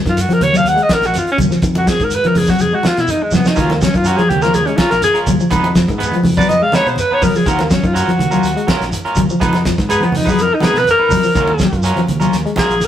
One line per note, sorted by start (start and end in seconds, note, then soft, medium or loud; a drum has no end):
0.06 0.27 F#2 medium
0.06 0.20 D#3 medium
0.06 0.23 F4 medium
0.06 kick medium
0.06 snare soft
0.06 closed hi-hat soft
0.06 shekere soft
0.17 0.34 F#4 medium
0.17 closed hi-hat medium
0.17 high conga soft
0.17 shekere medium
0.29 0.44 F3 medium
0.29 muted fingered electric bass stroke soft
0.29 closed hi-hat soft
0.29 high conga medium
0.33 0.45 A#4 medium
0.41 0.62 D#2 medium
0.41 0.59 C#5 medium
0.41 closed hi-hat medium
0.41 high conga medium
0.41 low conga medium
0.41 shekere soft
0.52 0.67 F#3 medium
0.52 closed hi-hat soft
0.52 high conga medium
0.52 shekere medium
0.57 0.69 F5 medium
0.64 0.76 D#2 medium
0.64 0.84 F#5 medium
0.64 closed hi-hat medium
0.64 high conga soft
0.64 shekere medium
0.76 0.91 G#3 medium
0.76 closed hi-hat soft
0.83 0.95 D#5 medium
0.89 kick medium
0.89 snare medium
0.89 closed hi-hat soft
0.89 high conga medium
0.89 shekere soft
0.93 1.07 A#4 medium
1.01 1.12 A#1 medium
1.01 snare soft
1.01 closed hi-hat soft
1.01 shekere soft
1.06 1.19 F#4 medium
1.14 snare soft
1.14 closed hi-hat medium
1.14 high conga medium
1.14 shekere medium
1.18 1.29 F4 medium
1.26 muted fingered electric bass stroke soft
1.26 closed hi-hat soft
1.32 1.37 C#4 medium
1.38 1.50 D#2 medium
1.38 1.46 F#3 medium
1.38 kick medium
1.38 closed hi-hat medium
1.38 low conga medium
1.38 shekere medium
1.51 1.58 F3 medium
1.51 snare soft
1.51 shekere medium
1.62 1.95 F2 medium
1.62 1.78 D#3 medium
1.62 kick medium
1.62 closed hi-hat medium
1.62 shekere medium
1.75 1.90 F#4 medium
1.75 closed hi-hat soft
1.75 high conga medium
1.87 1.96 F3 medium
1.87 2.05 G#4 medium
1.87 kick medium
1.87 snare medium
1.87 closed hi-hat soft
1.87 shekere medium
2.00 2.21 G#2 medium
2.00 2.15 D#3 medium
2.00 2.17 A#4 medium
2.00 kick medium
2.00 closed hi-hat soft
2.00 shekere soft
2.10 closed hi-hat medium
2.10 high conga soft
2.10 shekere medium
2.15 2.29 B4 medium
2.23 2.39 F3 medium
2.23 muted fingered electric bass stroke soft
2.23 closed hi-hat soft
2.23 high conga medium
2.27 2.39 A#4 medium
2.35 2.56 F2 medium
2.35 2.51 G#4 medium
2.35 open hi-hat medium
2.35 high conga medium
2.35 low conga medium
2.35 shekere soft
2.46 2.63 F#3 medium
2.46 2.63 F#4 medium
2.46 kick medium
2.46 snare soft
2.46 shekere medium
2.59 2.71 F2 medium
2.59 2.76 G#4 medium
2.59 closed hi-hat medium
2.59 high conga soft
2.59 low conga medium
2.59 shekere medium
2.73 2.87 G#3 medium
2.73 2.88 F#4 medium
2.83 3.01 F4 medium
2.83 muted fingered electric bass stroke soft
2.83 snare medium
2.83 closed hi-hat soft
2.83 high conga medium
2.83 shekere soft
2.96 3.08 B2 medium
2.96 3.12 E4 medium
2.96 snare soft
2.96 closed hi-hat soft
2.96 shekere soft
3.07 3.24 D#4 medium
3.07 closed hi-hat medium
3.07 high conga medium
3.07 shekere medium
3.23 3.36 G#3 medium
3.23 muted fingered electric bass stroke soft
3.31 3.45 F2 medium
3.31 3.40 F#3 medium
3.31 3.49 B3 medium
3.31 snare soft
3.31 low conga medium
3.31 shekere medium
3.45 3.53 F3 medium
3.45 3.62 D#4 medium
3.45 snare medium
3.45 shekere medium
3.55 3.89 D#2 medium
3.55 3.72 D#3 medium
3.55 3.72 F#3 medium
3.55 3.72 C#4 medium
3.55 3.72 F4 medium
3.55 3.72 A#4 medium
3.55 kick medium
3.55 closed hi-hat medium
3.55 high conga soft
3.55 low conga medium
3.55 shekere medium
3.60 3.74 F4 medium
3.70 3.83 A#3 medium
3.70 snare soft
3.70 high conga medium
3.81 3.90 F#3 medium
3.81 3.97 C#4 medium
3.81 kick medium
3.81 snare medium
3.81 closed hi-hat soft
3.81 shekere medium
3.93 4.16 F#2 medium
3.93 4.09 D#3 medium
3.93 4.09 F4 medium
3.93 kick medium
3.93 closed hi-hat soft
3.93 shekere soft
4.04 4.21 F#3 medium
4.04 4.21 C#4 medium
4.04 4.21 F4 medium
4.04 4.19 F#4 medium
4.04 4.21 A#4 medium
4.04 closed hi-hat medium
4.04 high conga soft
4.04 shekere medium
4.17 4.33 F3 medium
4.17 4.31 G#4 loud
4.17 muted fingered electric bass stroke soft
4.17 closed hi-hat soft
4.17 high conga medium
4.29 4.51 D#2 medium
4.29 4.44 G4 medium
4.29 closed hi-hat medium
4.29 high conga medium
4.29 low conga medium
4.29 shekere soft
4.42 4.59 F3 medium
4.42 4.57 C#4 soft
4.42 4.57 F4 soft
4.42 4.57 A#4 medium
4.42 4.56 A#4 medium
4.42 snare soft
4.42 closed hi-hat soft
4.42 shekere medium
4.54 4.66 D#2 medium
4.54 4.68 G#4 medium
4.54 closed hi-hat medium
4.54 high conga soft
4.54 low conga medium
4.54 shekere medium
4.67 4.82 G#3 medium
4.67 4.78 C#4 medium
4.67 closed hi-hat soft
4.76 4.94 C#4 medium
4.76 4.92 F4 medium
4.76 4.94 F4 medium
4.76 4.94 A#4 medium
4.76 kick medium
4.76 snare medium
4.76 closed hi-hat medium
4.76 high conga medium
4.76 shekere soft
4.91 5.02 A#1 medium
4.91 5.03 A#4 loud
4.91 snare soft
4.91 closed hi-hat soft
4.91 shekere soft
5.02 5.18 G#4 medium
5.02 closed hi-hat medium
5.02 high conga medium
5.02 shekere medium
5.14 5.30 C#4 soft
5.14 5.29 F4 soft
5.14 5.29 A#4 medium
5.14 muted fingered electric bass stroke soft
5.14 closed hi-hat soft
5.27 5.38 D#2 medium
5.27 5.35 F#3 medium
5.27 kick medium
5.27 closed hi-hat medium
5.27 low conga medium
5.27 shekere medium
5.40 5.47 F3 medium
5.40 shekere medium
5.50 5.84 F2 medium
5.50 5.66 D#3 medium
5.50 5.66 G#3 medium
5.50 5.66 B3 medium
5.50 5.67 D#4 medium
5.50 5.67 B4 medium
5.50 kick medium
5.50 closed hi-hat medium
5.50 high conga soft
5.50 low conga medium
5.50 shekere medium
5.64 closed hi-hat soft
5.64 high conga medium
5.75 5.84 F3 medium
5.75 kick medium
5.75 snare medium
5.75 closed hi-hat soft
5.75 shekere medium
5.88 6.09 G#2 medium
5.88 6.04 D#3 medium
5.88 kick medium
5.88 closed hi-hat soft
5.88 shekere soft
5.98 6.14 G#3 medium
5.98 6.15 B3 medium
5.98 6.15 B4 medium
5.98 muted clean electric guitar stroke medium
5.98 closed hi-hat medium
5.98 high conga soft
6.03 shekere medium
6.11 6.29 F3 medium
6.11 muted fingered electric bass stroke soft
6.11 closed hi-hat soft
6.11 high conga medium
6.24 6.46 F2 medium
6.24 open hi-hat medium
6.24 high conga medium
6.24 low conga medium
6.24 shekere soft
6.37 6.53 F#3 medium
6.37 6.52 B3 soft
6.37 6.52 D#4 soft
6.37 6.52 B4 soft
6.37 6.51 D5 medium
6.37 kick medium
6.37 shekere medium
6.47 6.60 F2 medium
6.47 6.64 D#5 medium
6.47 closed hi-hat medium
6.47 high conga soft
6.47 low conga medium
6.47 shekere medium
6.62 6.76 G#3 medium
6.62 6.77 F5 medium
6.72 6.88 G#3 medium
6.72 6.88 B3 medium
6.72 6.88 D#4 medium
6.72 6.89 B4 medium
6.72 6.89 C#5 medium
6.72 muted fingered electric bass stroke soft
6.72 snare medium
6.72 closed hi-hat soft
6.72 high conga medium
6.72 shekere soft
6.86 6.96 B2 medium
6.86 7.01 C5 medium
6.86 closed hi-hat soft
6.86 shekere soft
6.96 7.15 B4 medium
6.96 closed hi-hat medium
6.96 high conga medium
6.96 shekere medium
7.11 7.25 B3 soft
7.11 7.25 D#4 soft
7.11 7.25 B4 soft
7.11 7.25 C#5 loud
7.11 muted fingered electric bass stroke soft
7.22 7.33 F2 medium
7.22 7.30 F#3 medium
7.22 7.38 A#4 medium
7.22 kick medium
7.22 open hi-hat medium
7.22 low conga medium
7.22 shekere medium
7.35 7.42 F3 medium
7.35 7.50 G#4 medium
7.35 shekere medium
7.46 7.78 D#2 medium
7.46 7.61 D#3 medium
7.46 7.62 F#3 medium
7.46 7.61 C#4 medium
7.46 7.62 F4 medium
7.46 7.63 F#4 medium
7.46 7.62 A#4 medium
7.46 kick medium
7.46 closed hi-hat medium
7.46 shekere medium
7.59 7.74 A#3 medium
7.59 snare soft
7.59 high conga medium
7.70 7.79 F#3 medium
7.70 7.87 C#4 medium
7.70 kick medium
7.70 snare medium
7.70 closed hi-hat soft
7.70 shekere medium
7.83 8.05 F#2 medium
7.83 7.98 D#3 medium
7.83 7.97 F4 medium
7.83 kick medium
7.83 closed hi-hat soft
7.83 shekere soft
7.93 8.09 F#3 medium
7.93 8.10 C#4 medium
7.93 8.10 F4 medium
7.93 8.68 F#4 medium
7.93 8.10 A#4 medium
7.93 closed hi-hat medium
7.93 shekere medium
8.07 8.22 F3 medium
8.07 muted fingered electric bass stroke soft
8.07 closed hi-hat soft
8.07 high conga medium
8.19 8.40 D#2 medium
8.19 closed hi-hat soft
8.19 low conga medium
8.19 shekere soft
8.31 8.47 F#3 medium
8.31 8.46 C#4 soft
8.31 8.46 F4 medium
8.31 8.46 A#4 medium
8.31 closed hi-hat soft
8.31 high conga medium
8.31 shekere medium
8.43 8.55 D#2 medium
8.43 closed hi-hat medium
8.43 high conga soft
8.43 shekere medium
8.57 8.71 G#3 medium
8.57 closed hi-hat soft
8.67 8.83 F#3 medium
8.67 8.83 C#4 medium
8.67 8.83 F4 medium
8.67 8.83 A#4 medium
8.67 kick medium
8.67 snare medium
8.67 closed hi-hat medium
8.67 high conga loud
8.67 shekere soft
8.80 8.91 A#1 medium
8.80 snare soft
8.80 closed hi-hat soft
8.80 shekere soft
8.91 closed hi-hat medium
8.91 high conga medium
8.91 shekere medium
9.05 9.20 C#4 soft
9.05 9.19 F4 medium
9.05 9.19 A#4 medium
9.05 muted fingered electric bass stroke soft
9.05 closed hi-hat soft
9.15 9.28 D#2 medium
9.15 9.24 F#3 medium
9.15 kick medium
9.15 closed hi-hat medium
9.15 low conga medium
9.15 shekere medium
9.30 9.37 F3 medium
9.30 shekere medium
9.40 9.74 F2 medium
9.40 9.56 D#3 medium
9.40 9.56 G#3 medium
9.40 9.56 B3 medium
9.40 9.56 D#4 medium
9.40 9.56 B4 medium
9.40 kick medium
9.40 closed hi-hat medium
9.40 high conga soft
9.40 low conga medium
9.40 shekere medium
9.53 snare soft
9.53 closed hi-hat soft
9.53 high conga medium
9.65 9.74 F3 medium
9.65 kick medium
9.65 snare medium
9.65 closed hi-hat medium
9.65 shekere medium
9.78 10.00 G#2 medium
9.78 9.93 D#3 medium
9.78 kick medium
9.78 snare soft
9.78 closed hi-hat soft
9.78 shekere soft
9.89 10.05 G#3 medium
9.89 10.05 B3 medium
9.89 10.05 D#4 medium
9.89 10.06 G#4 medium
9.89 10.05 B4 medium
9.89 closed hi-hat medium
9.89 high conga soft
9.89 shekere medium
10.01 10.17 F3 medium
10.01 muted fingered electric bass stroke soft
10.01 closed hi-hat soft
10.01 high conga medium
10.05 10.18 B3 medium
10.12 10.35 F2 medium
10.12 open hi-hat medium
10.12 high conga medium
10.12 low conga medium
10.12 shekere soft
10.16 10.31 D#4 medium
10.25 10.42 F#3 medium
10.25 10.41 B3 soft
10.25 10.40 D#4 soft
10.25 10.40 B4 soft
10.25 kick medium
10.25 shekere medium
10.29 10.43 G#4 medium
10.38 10.49 F2 medium
10.38 10.56 A#4 loud
10.38 closed hi-hat medium
10.38 shekere medium
10.54 10.66 D#4 medium
10.60 10.77 G#3 medium
10.60 10.77 B3 medium
10.60 10.78 D#4 medium
10.60 10.80 G#4 medium
10.60 10.78 B4 medium
10.60 muted fingered electric bass stroke soft
10.60 snare medium
10.60 closed hi-hat medium
10.60 high conga loud
10.65 shekere soft
10.74 10.85 B2 medium
10.74 snare soft
10.74 closed hi-hat soft
10.78 10.89 B4 loud
10.78 shekere soft
10.84 closed hi-hat medium
10.84 high conga medium
10.84 shekere medium
10.91 11.83 A#4 medium
10.99 11.14 D#4 soft
10.99 11.14 B4 soft
10.99 muted fingered electric bass stroke soft
11.09 11.23 F2 medium
11.09 11.19 F#3 medium
11.09 kick medium
11.09 open hi-hat medium
11.09 low conga medium
11.09 shekere medium
11.23 11.31 F3 medium
11.23 shekere medium
11.34 11.68 D#2 medium
11.34 11.49 D#3 medium
11.34 11.51 F#3 medium
11.34 11.51 C#4 medium
11.34 11.51 F4 medium
11.34 11.52 A#4 medium
11.34 kick medium
11.34 closed hi-hat medium
11.34 high conga soft
11.34 low conga medium
11.34 shekere medium
11.47 high conga medium
11.59 11.68 F#3 medium
11.59 kick medium
11.59 snare medium
11.59 closed hi-hat soft
11.59 shekere medium
11.73 11.94 F#2 medium
11.73 muted clean electric guitar stroke medium
11.73 kick medium
11.73 closed hi-hat soft
11.73 shekere soft
11.82 11.99 F#3 medium
11.82 11.99 C#4 medium
11.82 12.00 F4 medium
11.82 12.00 A#4 medium
11.82 closed hi-hat medium
11.82 high conga soft
11.82 shekere medium
11.96 12.11 F3 medium
11.96 muted fingered electric bass stroke soft
11.96 closed hi-hat soft
11.96 high conga medium
12.07 12.30 D#2 medium
12.07 closed hi-hat soft
12.07 low conga medium
12.07 shekere soft
12.20 12.35 F#3 medium
12.20 12.36 C#4 soft
12.20 12.36 F4 soft
12.20 12.35 A#4 medium
12.20 closed hi-hat soft
12.20 high conga medium
12.20 shekere medium
12.32 12.44 D#2 medium
12.32 snare soft
12.32 closed hi-hat medium
12.32 high conga soft
12.32 shekere medium
12.46 12.60 G#3 medium
12.46 closed hi-hat soft
12.56 12.73 F#3 medium
12.56 12.73 C#4 medium
12.56 12.73 F4 medium
12.56 12.86 G#4 medium
12.56 12.73 A#4 medium
12.56 kick medium
12.56 snare medium
12.56 closed hi-hat soft
12.56 high conga medium
12.56 shekere soft
12.69 12.80 A#1 medium
12.69 closed hi-hat soft
12.69 shekere soft
12.80 closed hi-hat medium
12.80 high conga medium
12.80 shekere medium